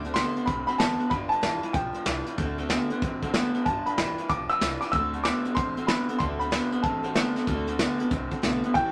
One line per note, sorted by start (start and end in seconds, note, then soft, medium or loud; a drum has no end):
0.00 0.20 D2 loud
0.00 0.15 A4 medium
0.00 0.13 D6 loud
0.04 0.15 D3 medium
0.04 0.15 A3 medium
0.04 0.15 C4 soft
0.04 0.15 F#4 soft
0.04 closed hi-hat medium
0.14 0.36 D3 medium
0.14 0.34 D3 medium
0.14 0.36 A3 medium
0.14 0.34 B3 loud
0.14 0.36 C4 medium
0.14 0.35 F#4 medium
0.14 0.34 A4 loud
0.14 0.48 C6 loud
0.14 snare loud
0.14 closed hi-hat medium
0.35 0.47 D3 medium
0.35 0.47 B3 medium
0.35 0.46 C4 soft
0.35 0.47 F#4 soft
0.35 0.47 A4 medium
0.35 muted upright bass stroke medium
0.35 closed hi-hat medium
0.46 0.65 B1 medium
0.46 0.66 D3 medium
0.46 0.67 A3 medium
0.46 0.68 C4 medium
0.46 0.66 C4 medium
0.46 0.68 F#4 medium
0.46 0.66 A4 medium
0.46 0.65 B5 medium
0.46 kick loud
0.46 closed hi-hat medium
0.67 0.78 D3 medium
0.67 0.78 C4 loud
0.67 0.78 C4 soft
0.67 0.79 F#4 medium
0.67 0.79 A4 medium
0.67 0.78 B5 loud
0.67 closed hi-hat medium
0.78 0.97 A1 medium
0.78 0.99 D3 medium
0.78 0.98 D3 medium
0.78 0.99 A3 loud
0.78 0.98 B3 medium
0.78 1.00 C4 medium
0.78 0.99 F#4 medium
0.78 0.97 A4 medium
0.78 1.08 A5 medium
0.78 snare loud
0.78 closed hi-hat medium
0.98 1.10 D3 medium
0.98 1.10 B3 medium
0.98 1.10 C4 soft
0.98 1.11 F#4 soft
0.98 1.10 A4 soft
0.98 muted upright bass stroke medium
0.98 closed hi-hat medium
1.10 1.25 G1 medium
1.10 1.29 G2 medium
1.10 1.30 D3 loud
1.10 1.31 G3 medium
1.10 1.31 D4 medium
1.10 1.30 F4 medium
1.10 1.28 B4 medium
1.10 1.15 B5 loud
1.10 kick loud
1.10 closed hi-hat medium
1.29 1.42 G2 medium
1.29 1.42 D3 medium
1.29 1.41 D4 soft
1.29 1.42 F4 soft
1.29 1.42 B4 soft
1.29 1.60 A5 loud
1.29 muted upright bass stroke medium
1.29 closed hi-hat medium
1.41 1.60 A1 medium
1.41 1.61 G2 medium
1.41 1.61 E3 loud
1.41 1.62 G3 medium
1.41 1.63 D4 medium
1.41 1.62 F4 medium
1.41 1.60 B4 medium
1.41 snare loud
1.41 closed hi-hat medium
1.61 1.73 G2 medium
1.61 1.74 E3 medium
1.61 1.73 D4 soft
1.61 1.74 F4 soft
1.61 1.74 B4 soft
1.61 muted upright bass stroke medium
1.61 closed hi-hat medium
1.73 1.92 B1 medium
1.73 1.93 G2 medium
1.73 1.93 F3 medium
1.73 1.94 G3 medium
1.73 1.95 D4 medium
1.73 1.93 F4 medium
1.73 1.92 B4 medium
1.73 2.34 G5 medium
1.73 kick loud
1.73 closed hi-hat medium
1.93 2.05 G2 medium
1.93 2.06 F3 medium
1.93 2.04 D4 soft
1.93 2.05 F4 soft
1.93 2.05 B4 medium
1.93 muted upright bass stroke medium
1.93 closed hi-hat medium
2.05 2.23 C2 medium
2.05 2.25 G2 medium
2.05 2.25 E3 medium
2.05 2.26 G3 medium
2.05 2.26 D4 medium
2.05 2.26 F4 medium
2.05 2.24 B4 medium
2.05 snare loud
2.05 closed hi-hat medium
2.26 2.37 G2 medium
2.26 2.37 E3 medium
2.26 2.39 D4 soft
2.26 2.39 F4 soft
2.26 2.38 B4 medium
2.26 closed hi-hat medium
2.38 2.75 D2 medium
2.38 2.56 D3 medium
2.38 2.58 D3 medium
2.38 2.57 A3 loud
2.38 2.59 A3 medium
2.38 2.59 C4 medium
2.38 2.58 F#4 medium
2.38 2.57 A4 medium
2.38 kick loud
2.38 closed hi-hat medium
2.58 2.69 D3 medium
2.58 2.69 A3 medium
2.58 2.69 C4 soft
2.58 2.69 F#4 medium
2.58 2.70 A4 medium
2.58 closed hi-hat medium
2.69 2.90 D3 loud
2.69 2.89 D3 medium
2.69 2.90 A3 medium
2.69 2.89 B3 loud
2.69 2.90 C4 medium
2.69 2.90 F#4 loud
2.69 2.88 A4 medium
2.69 snare loud
2.69 closed hi-hat medium
2.90 3.01 D3 medium
2.90 3.02 B3 medium
2.90 3.01 C4 soft
2.90 3.02 F#4 medium
2.90 3.02 A4 medium
2.90 muted upright bass stroke medium
2.90 closed hi-hat medium
3.02 3.38 A1 medium
3.02 3.21 D3 medium
3.02 3.22 A3 medium
3.02 3.23 C4 medium
3.02 3.21 C4 medium
3.02 3.23 F#4 medium
3.02 3.21 A4 medium
3.02 kick loud
3.02 closed hi-hat medium
3.22 3.33 D3 medium
3.22 3.33 C4 medium
3.22 3.34 C4 medium
3.22 3.34 F#4 medium
3.22 3.34 A4 medium
3.22 kick medium
3.22 closed hi-hat medium
3.34 3.54 D3 medium
3.34 3.52 D3 medium
3.34 3.55 A3 medium
3.34 3.53 B3 medium
3.34 3.55 C4 medium
3.34 3.53 F#4 medium
3.34 3.52 A4 loud
3.34 snare loud
3.34 closed hi-hat medium
3.53 3.65 D3 medium
3.53 3.65 B3 medium
3.53 3.66 C4 soft
3.53 3.66 F#4 medium
3.53 3.65 A4 medium
3.53 muted upright bass stroke medium
3.53 closed hi-hat medium
3.65 3.80 G1 medium
3.65 3.84 G2 medium
3.65 3.84 D3 loud
3.65 3.86 G3 medium
3.65 3.86 D4 medium
3.65 3.87 F4 medium
3.65 3.85 B4 medium
3.65 3.87 A5 medium
3.65 kick loud
3.65 closed hi-hat medium
3.86 3.96 G2 medium
3.86 3.97 D3 medium
3.86 3.97 D4 soft
3.86 3.98 F4 soft
3.86 3.98 B4 soft
3.86 3.96 B5 loud
3.86 closed hi-hat medium
3.97 4.15 A1 medium
3.97 4.16 G2 medium
3.97 4.16 E3 loud
3.97 4.18 G3 medium
3.97 4.18 D4 medium
3.97 4.18 F4 medium
3.97 4.16 B4 medium
3.97 4.30 B5 medium
3.97 snare loud
3.97 closed hi-hat medium
4.17 4.28 G2 medium
4.17 4.29 E3 medium
4.17 4.29 D4 soft
4.17 4.29 F4 soft
4.17 4.29 B4 soft
4.17 muted upright bass stroke medium
4.17 closed hi-hat medium
4.28 4.47 B1 medium
4.28 4.48 G2 medium
4.28 4.48 F3 medium
4.28 4.49 G3 medium
4.28 4.50 D4 medium
4.28 4.49 F4 medium
4.28 4.48 B4 medium
4.28 4.50 D6 loud
4.28 kick loud
4.28 closed hi-hat medium
4.49 4.60 G2 medium
4.49 4.61 F3 medium
4.49 4.60 D4 medium
4.49 4.60 F4 soft
4.49 4.61 B4 medium
4.49 4.82 E6 loud
4.49 muted upright bass stroke medium
4.49 closed hi-hat medium
4.60 4.78 C2 medium
4.60 4.80 G2 medium
4.60 4.80 E3 medium
4.60 4.81 G3 medium
4.60 4.82 D4 medium
4.60 4.81 F4 medium
4.60 4.80 B4 medium
4.60 snare loud
4.60 closed hi-hat medium
4.81 4.92 G2 medium
4.81 4.92 E3 medium
4.81 4.93 D4 soft
4.81 4.94 F4 soft
4.81 4.93 B4 soft
4.81 4.93 D6 medium
4.81 snare soft
4.81 closed hi-hat medium
4.92 5.29 D2 medium
4.92 5.13 D3 medium
4.92 5.12 D3 medium
4.92 5.14 A3 medium
4.92 5.12 A3 loud
4.92 5.14 C4 medium
4.92 5.14 F#4 medium
4.92 5.12 A4 medium
4.92 5.25 E6 loud
4.92 kick loud
4.92 closed hi-hat medium
5.13 5.24 D3 medium
5.13 5.24 A3 medium
5.13 5.25 C4 soft
5.13 5.26 F#4 soft
5.13 5.25 A4 soft
5.13 closed hi-hat medium
5.24 5.45 D3 medium
5.24 5.43 D3 medium
5.24 5.45 A3 medium
5.24 5.44 B3 loud
5.24 5.46 C4 medium
5.24 5.45 F#4 loud
5.24 5.43 A4 medium
5.24 5.54 D6 loud
5.24 snare loud
5.24 closed hi-hat medium
5.44 5.55 D3 medium
5.44 5.56 B3 medium
5.44 5.56 C4 soft
5.44 5.57 F#4 medium
5.44 5.56 A4 medium
5.44 muted upright bass stroke medium
5.44 closed hi-hat medium
5.55 5.93 A1 medium
5.55 5.75 D3 medium
5.55 5.77 A3 medium
5.55 5.77 C4 medium
5.55 5.75 C4 medium
5.55 5.77 F#4 medium
5.55 5.76 A4 medium
5.55 5.89 C6 loud
5.55 kick loud
5.55 closed hi-hat medium
5.77 5.88 D3 medium
5.77 5.88 C4 medium
5.77 5.88 C4 soft
5.77 5.88 F#4 medium
5.77 5.88 A4 soft
5.77 closed hi-hat medium
5.87 6.09 D3 medium
5.87 6.07 D3 medium
5.87 6.09 A3 medium
5.87 6.07 B3 medium
5.87 6.09 C4 medium
5.87 6.08 F#4 medium
5.87 6.07 A4 medium
5.87 6.21 B5 medium
5.87 snare loud
5.87 closed hi-hat medium
6.08 6.19 D3 medium
6.08 6.20 B3 medium
6.08 6.19 C4 soft
6.08 6.20 F#4 soft
6.08 6.20 A4 medium
6.08 muted upright bass stroke medium
6.08 closed hi-hat medium
6.18 6.57 D2 medium
6.18 6.40 D3 medium
6.18 6.39 D3 medium
6.18 6.40 A3 medium
6.18 6.39 A3 medium
6.18 6.41 C4 medium
6.18 6.40 F#4 medium
6.18 6.39 A4 medium
6.18 6.23 C6 medium
6.18 kick loud
6.18 closed hi-hat medium
6.39 6.51 D3 medium
6.39 6.51 A3 medium
6.39 6.51 C4 soft
6.39 6.51 F#4 soft
6.39 6.52 A4 medium
6.39 6.70 B5 loud
6.39 closed hi-hat medium
6.51 6.72 D3 medium
6.51 6.70 D3 medium
6.51 6.72 A3 medium
6.51 6.71 B3 loud
6.51 6.73 C4 medium
6.51 6.73 F#4 medium
6.51 6.71 A4 medium
6.51 snare loud
6.51 closed hi-hat medium
6.72 6.83 D3 medium
6.72 6.83 B3 medium
6.72 6.83 C4 soft
6.72 6.84 F#4 soft
6.72 6.84 A4 medium
6.72 muted upright bass stroke medium
6.72 closed hi-hat medium
6.83 7.21 A1 medium
6.83 7.02 D3 medium
6.83 7.04 A3 medium
6.83 7.03 C4 medium
6.83 7.04 C4 medium
6.83 7.03 F#4 medium
6.83 7.02 A4 medium
6.83 7.43 A5 medium
6.83 kick loud
6.83 closed hi-hat medium
7.03 7.14 D3 medium
7.03 7.15 C4 medium
7.03 7.14 C4 soft
7.03 7.15 F#4 medium
7.03 7.15 A4 medium
7.03 closed hi-hat medium
7.14 7.36 D3 medium
7.14 7.34 D3 medium
7.14 7.36 A3 medium
7.14 7.34 B3 medium
7.14 7.36 C4 medium
7.14 7.35 F#4 medium
7.14 7.34 A4 medium
7.14 snare loud
7.14 closed hi-hat medium
7.35 7.47 D3 medium
7.35 7.47 B3 medium
7.35 7.47 C4 soft
7.35 7.47 F#4 soft
7.35 7.47 A4 medium
7.35 muted upright bass stroke medium
7.35 snare soft
7.35 closed hi-hat medium
7.47 7.84 D2 loud
7.47 7.68 D3 medium
7.47 7.66 D3 medium
7.47 7.68 A3 medium
7.47 7.67 A3 loud
7.47 7.68 C4 loud
7.47 7.68 F#4 loud
7.47 7.66 A4 loud
7.47 kick loud
7.47 closed hi-hat medium
7.67 7.78 D3 medium
7.67 7.79 A3 medium
7.67 7.79 C4 soft
7.67 7.79 F#4 soft
7.67 7.79 A4 medium
7.67 closed hi-hat medium
7.79 8.00 D3 medium
7.79 7.98 D3 loud
7.79 8.00 A3 loud
7.79 7.98 B3 loud
7.79 8.00 C4 medium
7.79 7.98 F#4 loud
7.79 7.97 A4 loud
7.79 snare loud
7.79 closed hi-hat loud
7.98 8.10 D3 medium
7.98 8.11 B3 medium
7.98 8.10 C4 soft
7.98 8.11 F#4 medium
7.98 8.11 A4 medium
7.98 muted upright bass stroke medium
7.98 closed hi-hat medium
8.10 8.29 C2 medium
8.10 8.30 D3 medium
8.10 8.31 A3 medium
8.10 8.32 C4 medium
8.10 8.30 C4 medium
8.10 8.31 F#4 medium
8.10 8.30 A4 medium
8.10 kick loud
8.10 closed hi-hat medium
8.31 8.42 D3 medium
8.31 8.42 C4 medium
8.31 8.42 C4 soft
8.31 8.43 F#4 medium
8.31 8.43 A4 medium
8.31 kick medium
8.31 closed hi-hat medium
8.42 8.61 B1 medium
8.42 8.63 D3 medium
8.42 8.62 D3 medium
8.42 8.64 A3 loud
8.42 8.62 B3 medium
8.42 8.64 C4 loud
8.42 8.64 F#4 medium
8.42 8.62 A4 loud
8.42 snare medium
8.42 closed hi-hat medium
8.63 8.75 D3 medium
8.63 8.75 B3 medium
8.63 8.76 C4 soft
8.63 8.76 F#4 soft
8.63 8.75 A4 soft
8.63 muted upright bass stroke medium
8.63 closed hi-hat medium
8.74 8.92 A1 medium
8.74 8.92 A2 medium
8.74 8.92 E3 medium
8.74 8.92 E3 loud
8.74 8.92 G3 medium
8.74 8.92 C#4 medium
8.74 8.92 G4 medium
8.74 8.92 A4 medium
8.74 8.92 G5 loud
8.74 kick loud
8.74 closed hi-hat medium